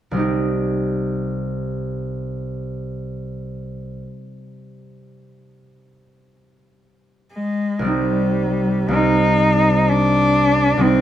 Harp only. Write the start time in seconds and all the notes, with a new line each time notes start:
0.11 C2 G3
0.17 D#4 G4
7.79 C2 G3
7.84 C4 D#4
8.88 C2 G3
8.93 C4 D#4
10.77 C2 G3 C4
10.81 D#4